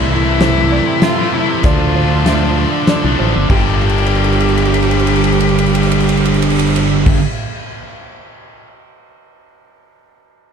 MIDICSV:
0, 0, Header, 1, 9, 480
1, 0, Start_track
1, 0, Tempo, 619835
1, 1270, Time_signature, 3, 2, 24, 8
1, 8154, End_track
2, 0, Start_track
2, 0, Title_t, "Analog synth pad"
2, 0, Program_c, 0, 89
2, 0, Note_on_c, 0, 69, 82
2, 0, Note_on_c, 0, 76, 80
2, 0, Note_on_c, 0, 84, 81
2, 1236, Note_off_c, 0, 84, 0
2, 1239, Note_off_c, 0, 76, 0
2, 1246, Note_off_c, 0, 69, 0
2, 1260, Note_on_c, 0, 65, 79
2, 1260, Note_on_c, 0, 84, 90
2, 1261, Note_on_c, 0, 74, 73
2, 2690, Note_off_c, 0, 65, 0
2, 2690, Note_off_c, 0, 74, 0
2, 2690, Note_off_c, 0, 84, 0
2, 2699, Note_on_c, 0, 79, 84
2, 2701, Note_on_c, 0, 70, 71
2, 2704, Note_on_c, 0, 62, 75
2, 5531, Note_off_c, 0, 79, 0
2, 5533, Note_off_c, 0, 70, 0
2, 5534, Note_off_c, 0, 62, 0
2, 8154, End_track
3, 0, Start_track
3, 0, Title_t, "Felt piano"
3, 0, Program_c, 1, 0
3, 0, Note_on_c, 1, 74, 101
3, 311, Note_off_c, 1, 74, 0
3, 317, Note_on_c, 1, 72, 84
3, 551, Note_on_c, 1, 74, 78
3, 554, Note_off_c, 1, 72, 0
3, 790, Note_off_c, 1, 74, 0
3, 800, Note_on_c, 1, 76, 86
3, 1273, Note_on_c, 1, 74, 104
3, 1274, Note_off_c, 1, 76, 0
3, 1511, Note_off_c, 1, 74, 0
3, 1512, Note_on_c, 1, 72, 78
3, 1750, Note_on_c, 1, 76, 93
3, 1751, Note_off_c, 1, 72, 0
3, 2229, Note_off_c, 1, 76, 0
3, 2234, Note_on_c, 1, 74, 81
3, 2471, Note_on_c, 1, 72, 81
3, 2472, Note_off_c, 1, 74, 0
3, 2710, Note_off_c, 1, 72, 0
3, 2710, Note_on_c, 1, 67, 88
3, 5568, Note_off_c, 1, 67, 0
3, 8154, End_track
4, 0, Start_track
4, 0, Title_t, "Cello"
4, 0, Program_c, 2, 42
4, 88, Note_on_c, 2, 64, 115
4, 797, Note_on_c, 2, 65, 115
4, 808, Note_off_c, 2, 64, 0
4, 1031, Note_on_c, 2, 64, 100
4, 1043, Note_off_c, 2, 65, 0
4, 1276, Note_on_c, 2, 65, 99
4, 1287, Note_off_c, 2, 64, 0
4, 2232, Note_off_c, 2, 65, 0
4, 2706, Note_on_c, 2, 67, 95
4, 5535, Note_off_c, 2, 67, 0
4, 8154, End_track
5, 0, Start_track
5, 0, Title_t, "Distorted electric guitar"
5, 0, Program_c, 3, 30
5, 62, Note_on_c, 3, 48, 84
5, 68, Note_on_c, 3, 52, 89
5, 74, Note_on_c, 3, 57, 81
5, 81, Note_on_c, 3, 64, 99
5, 173, Note_off_c, 3, 64, 0
5, 182, Note_on_c, 3, 64, 87
5, 188, Note_off_c, 3, 57, 0
5, 191, Note_off_c, 3, 52, 0
5, 191, Note_on_c, 3, 57, 73
5, 200, Note_on_c, 3, 52, 66
5, 290, Note_off_c, 3, 48, 0
5, 299, Note_off_c, 3, 52, 0
5, 299, Note_on_c, 3, 48, 94
5, 308, Note_on_c, 3, 52, 102
5, 309, Note_off_c, 3, 64, 0
5, 310, Note_off_c, 3, 57, 0
5, 313, Note_on_c, 3, 57, 94
5, 319, Note_on_c, 3, 64, 120
5, 653, Note_off_c, 3, 64, 0
5, 662, Note_off_c, 3, 57, 0
5, 662, Note_on_c, 3, 64, 78
5, 668, Note_off_c, 3, 52, 0
5, 671, Note_on_c, 3, 57, 69
5, 678, Note_on_c, 3, 52, 64
5, 772, Note_off_c, 3, 48, 0
5, 779, Note_off_c, 3, 52, 0
5, 781, Note_on_c, 3, 48, 83
5, 788, Note_off_c, 3, 57, 0
5, 788, Note_on_c, 3, 52, 85
5, 790, Note_off_c, 3, 64, 0
5, 797, Note_on_c, 3, 57, 78
5, 800, Note_on_c, 3, 64, 90
5, 894, Note_off_c, 3, 64, 0
5, 902, Note_off_c, 3, 57, 0
5, 903, Note_on_c, 3, 64, 93
5, 911, Note_off_c, 3, 52, 0
5, 912, Note_on_c, 3, 57, 78
5, 921, Note_on_c, 3, 52, 70
5, 1007, Note_off_c, 3, 48, 0
5, 1016, Note_on_c, 3, 48, 75
5, 1017, Note_off_c, 3, 52, 0
5, 1022, Note_off_c, 3, 57, 0
5, 1027, Note_off_c, 3, 64, 0
5, 1027, Note_on_c, 3, 52, 91
5, 1031, Note_on_c, 3, 57, 94
5, 1036, Note_on_c, 3, 64, 97
5, 1134, Note_off_c, 3, 64, 0
5, 1143, Note_on_c, 3, 64, 82
5, 1146, Note_off_c, 3, 57, 0
5, 1153, Note_off_c, 3, 52, 0
5, 1155, Note_on_c, 3, 57, 68
5, 1163, Note_on_c, 3, 52, 57
5, 1249, Note_off_c, 3, 48, 0
5, 1252, Note_off_c, 3, 64, 0
5, 1257, Note_on_c, 3, 50, 81
5, 1258, Note_off_c, 3, 57, 0
5, 1261, Note_off_c, 3, 52, 0
5, 1264, Note_on_c, 3, 53, 94
5, 1271, Note_on_c, 3, 57, 94
5, 1276, Note_on_c, 3, 62, 112
5, 1490, Note_off_c, 3, 50, 0
5, 1499, Note_on_c, 3, 50, 83
5, 1500, Note_off_c, 3, 53, 0
5, 1503, Note_off_c, 3, 57, 0
5, 1509, Note_on_c, 3, 53, 93
5, 1510, Note_off_c, 3, 62, 0
5, 1512, Note_on_c, 3, 57, 87
5, 1519, Note_on_c, 3, 62, 90
5, 1607, Note_off_c, 3, 62, 0
5, 1616, Note_on_c, 3, 62, 81
5, 1617, Note_off_c, 3, 57, 0
5, 1627, Note_on_c, 3, 57, 61
5, 1628, Note_off_c, 3, 53, 0
5, 1637, Note_on_c, 3, 53, 68
5, 1724, Note_off_c, 3, 50, 0
5, 1733, Note_on_c, 3, 50, 90
5, 1734, Note_off_c, 3, 53, 0
5, 1741, Note_off_c, 3, 57, 0
5, 1743, Note_on_c, 3, 53, 97
5, 1745, Note_off_c, 3, 62, 0
5, 1750, Note_on_c, 3, 57, 93
5, 1755, Note_on_c, 3, 62, 111
5, 2087, Note_off_c, 3, 62, 0
5, 2096, Note_on_c, 3, 62, 73
5, 2099, Note_off_c, 3, 57, 0
5, 2108, Note_off_c, 3, 53, 0
5, 2109, Note_on_c, 3, 57, 68
5, 2118, Note_on_c, 3, 53, 59
5, 2210, Note_off_c, 3, 50, 0
5, 2219, Note_on_c, 3, 50, 77
5, 2220, Note_off_c, 3, 53, 0
5, 2225, Note_off_c, 3, 57, 0
5, 2230, Note_on_c, 3, 53, 78
5, 2231, Note_off_c, 3, 62, 0
5, 2234, Note_on_c, 3, 57, 84
5, 2241, Note_on_c, 3, 62, 82
5, 2326, Note_off_c, 3, 62, 0
5, 2335, Note_on_c, 3, 62, 78
5, 2338, Note_off_c, 3, 57, 0
5, 2346, Note_off_c, 3, 53, 0
5, 2347, Note_on_c, 3, 57, 78
5, 2355, Note_on_c, 3, 53, 67
5, 2448, Note_off_c, 3, 50, 0
5, 2456, Note_off_c, 3, 53, 0
5, 2458, Note_on_c, 3, 50, 89
5, 2461, Note_off_c, 3, 57, 0
5, 2465, Note_on_c, 3, 53, 79
5, 2466, Note_off_c, 3, 62, 0
5, 2470, Note_on_c, 3, 57, 82
5, 2475, Note_on_c, 3, 62, 89
5, 2569, Note_off_c, 3, 62, 0
5, 2578, Note_on_c, 3, 62, 82
5, 2579, Note_off_c, 3, 57, 0
5, 2588, Note_off_c, 3, 53, 0
5, 2588, Note_on_c, 3, 57, 64
5, 2597, Note_on_c, 3, 53, 66
5, 2689, Note_off_c, 3, 50, 0
5, 2689, Note_off_c, 3, 62, 0
5, 2694, Note_off_c, 3, 57, 0
5, 2695, Note_on_c, 3, 43, 85
5, 2699, Note_off_c, 3, 53, 0
5, 2714, Note_on_c, 3, 50, 96
5, 2728, Note_on_c, 3, 55, 104
5, 5560, Note_off_c, 3, 43, 0
5, 5570, Note_off_c, 3, 50, 0
5, 5577, Note_off_c, 3, 55, 0
5, 8154, End_track
6, 0, Start_track
6, 0, Title_t, "Distorted electric guitar"
6, 0, Program_c, 4, 30
6, 0, Note_on_c, 4, 48, 103
6, 0, Note_on_c, 4, 52, 114
6, 0, Note_on_c, 4, 57, 111
6, 0, Note_on_c, 4, 64, 110
6, 301, Note_off_c, 4, 48, 0
6, 308, Note_off_c, 4, 52, 0
6, 321, Note_off_c, 4, 64, 0
6, 322, Note_off_c, 4, 57, 0
6, 551, Note_on_c, 4, 48, 76
6, 556, Note_on_c, 4, 52, 87
6, 567, Note_on_c, 4, 57, 89
6, 571, Note_on_c, 4, 64, 81
6, 666, Note_off_c, 4, 64, 0
6, 668, Note_off_c, 4, 57, 0
6, 670, Note_off_c, 4, 52, 0
6, 910, Note_off_c, 4, 48, 0
6, 1990, Note_on_c, 4, 50, 76
6, 1997, Note_on_c, 4, 53, 81
6, 2004, Note_on_c, 4, 57, 82
6, 2011, Note_on_c, 4, 62, 90
6, 2100, Note_off_c, 4, 62, 0
6, 2106, Note_off_c, 4, 57, 0
6, 2107, Note_off_c, 4, 53, 0
6, 2349, Note_off_c, 4, 50, 0
6, 2720, Note_on_c, 4, 58, 91
6, 2723, Note_on_c, 4, 62, 99
6, 2729, Note_on_c, 4, 67, 99
6, 5573, Note_off_c, 4, 58, 0
6, 5574, Note_off_c, 4, 62, 0
6, 5577, Note_off_c, 4, 67, 0
6, 8154, End_track
7, 0, Start_track
7, 0, Title_t, "Fingered electric bass"
7, 0, Program_c, 5, 33
7, 0, Note_on_c, 5, 36, 88
7, 612, Note_off_c, 5, 36, 0
7, 1271, Note_on_c, 5, 38, 87
7, 2049, Note_off_c, 5, 38, 0
7, 2356, Note_on_c, 5, 36, 89
7, 2461, Note_off_c, 5, 36, 0
7, 2478, Note_on_c, 5, 33, 85
7, 2582, Note_off_c, 5, 33, 0
7, 2598, Note_on_c, 5, 31, 87
7, 2702, Note_off_c, 5, 31, 0
7, 2709, Note_on_c, 5, 31, 94
7, 5537, Note_off_c, 5, 31, 0
7, 8154, End_track
8, 0, Start_track
8, 0, Title_t, "Muted distorted electric guitar strokes"
8, 675, Note_on_c, 9, 29, 55
8, 753, Note_off_c, 9, 29, 0
8, 1151, Note_on_c, 9, 29, 51
8, 1228, Note_off_c, 9, 29, 0
8, 2109, Note_on_c, 9, 29, 58
8, 2187, Note_off_c, 9, 29, 0
8, 2587, Note_on_c, 9, 29, 54
8, 2665, Note_off_c, 9, 29, 0
8, 8154, End_track
9, 0, Start_track
9, 0, Title_t, "Drums"
9, 315, Note_on_c, 9, 38, 87
9, 315, Note_on_c, 9, 42, 84
9, 392, Note_off_c, 9, 38, 0
9, 392, Note_off_c, 9, 42, 0
9, 789, Note_on_c, 9, 38, 96
9, 789, Note_on_c, 9, 42, 86
9, 866, Note_off_c, 9, 38, 0
9, 866, Note_off_c, 9, 42, 0
9, 1266, Note_on_c, 9, 42, 75
9, 1271, Note_on_c, 9, 36, 123
9, 1343, Note_off_c, 9, 42, 0
9, 1348, Note_off_c, 9, 36, 0
9, 1750, Note_on_c, 9, 38, 88
9, 1750, Note_on_c, 9, 42, 76
9, 1827, Note_off_c, 9, 38, 0
9, 1827, Note_off_c, 9, 42, 0
9, 2226, Note_on_c, 9, 38, 98
9, 2226, Note_on_c, 9, 42, 87
9, 2303, Note_off_c, 9, 38, 0
9, 2303, Note_off_c, 9, 42, 0
9, 2708, Note_on_c, 9, 49, 92
9, 2709, Note_on_c, 9, 36, 101
9, 2786, Note_off_c, 9, 49, 0
9, 2787, Note_off_c, 9, 36, 0
9, 2954, Note_on_c, 9, 57, 52
9, 3016, Note_on_c, 9, 51, 57
9, 3031, Note_off_c, 9, 57, 0
9, 3083, Note_on_c, 9, 57, 56
9, 3093, Note_off_c, 9, 51, 0
9, 3147, Note_on_c, 9, 51, 59
9, 3160, Note_off_c, 9, 57, 0
9, 3214, Note_on_c, 9, 57, 54
9, 3225, Note_off_c, 9, 51, 0
9, 3284, Note_on_c, 9, 51, 53
9, 3291, Note_off_c, 9, 57, 0
9, 3348, Note_on_c, 9, 57, 56
9, 3361, Note_off_c, 9, 51, 0
9, 3410, Note_on_c, 9, 51, 56
9, 3426, Note_off_c, 9, 57, 0
9, 3474, Note_on_c, 9, 57, 59
9, 3488, Note_off_c, 9, 51, 0
9, 3543, Note_on_c, 9, 51, 63
9, 3552, Note_off_c, 9, 57, 0
9, 3603, Note_on_c, 9, 57, 66
9, 3620, Note_off_c, 9, 51, 0
9, 3670, Note_on_c, 9, 51, 70
9, 3680, Note_off_c, 9, 57, 0
9, 3736, Note_on_c, 9, 57, 70
9, 3748, Note_off_c, 9, 51, 0
9, 3802, Note_on_c, 9, 51, 69
9, 3813, Note_off_c, 9, 57, 0
9, 3867, Note_on_c, 9, 57, 68
9, 3879, Note_off_c, 9, 51, 0
9, 3925, Note_on_c, 9, 51, 74
9, 3945, Note_off_c, 9, 57, 0
9, 3993, Note_on_c, 9, 57, 76
9, 4002, Note_off_c, 9, 51, 0
9, 4057, Note_on_c, 9, 51, 69
9, 4070, Note_off_c, 9, 57, 0
9, 4122, Note_on_c, 9, 57, 71
9, 4134, Note_off_c, 9, 51, 0
9, 4185, Note_on_c, 9, 51, 81
9, 4199, Note_off_c, 9, 57, 0
9, 4250, Note_on_c, 9, 57, 70
9, 4262, Note_off_c, 9, 51, 0
9, 4325, Note_on_c, 9, 51, 84
9, 4327, Note_off_c, 9, 57, 0
9, 4384, Note_on_c, 9, 57, 78
9, 4402, Note_off_c, 9, 51, 0
9, 4451, Note_on_c, 9, 51, 89
9, 4462, Note_off_c, 9, 57, 0
9, 4514, Note_on_c, 9, 57, 88
9, 4529, Note_off_c, 9, 51, 0
9, 4581, Note_on_c, 9, 51, 92
9, 4591, Note_off_c, 9, 57, 0
9, 4649, Note_on_c, 9, 57, 91
9, 4658, Note_off_c, 9, 51, 0
9, 4715, Note_on_c, 9, 51, 90
9, 4726, Note_off_c, 9, 57, 0
9, 4780, Note_on_c, 9, 57, 82
9, 4792, Note_off_c, 9, 51, 0
9, 4843, Note_on_c, 9, 51, 90
9, 4857, Note_off_c, 9, 57, 0
9, 4909, Note_on_c, 9, 57, 86
9, 4920, Note_off_c, 9, 51, 0
9, 4973, Note_on_c, 9, 51, 96
9, 4987, Note_off_c, 9, 57, 0
9, 5034, Note_on_c, 9, 57, 102
9, 5051, Note_off_c, 9, 51, 0
9, 5105, Note_on_c, 9, 51, 108
9, 5112, Note_off_c, 9, 57, 0
9, 5167, Note_on_c, 9, 57, 97
9, 5182, Note_off_c, 9, 51, 0
9, 5234, Note_on_c, 9, 51, 94
9, 5244, Note_off_c, 9, 57, 0
9, 5311, Note_off_c, 9, 51, 0
9, 5468, Note_on_c, 9, 49, 111
9, 5470, Note_on_c, 9, 36, 124
9, 5545, Note_off_c, 9, 49, 0
9, 5548, Note_off_c, 9, 36, 0
9, 8154, End_track
0, 0, End_of_file